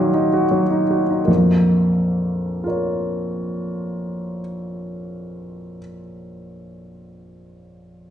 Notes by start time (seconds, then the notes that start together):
Already playing: A#2 D#3 D#4 F#4 D#5
0.00 F#3
0.14 D#4
0.33 F#4
0.51 F#3
0.71 D#4
0.91 F#4
1.10 D#4
1.25 A#1 F2 A#4
2.64 F4 A#4 C#5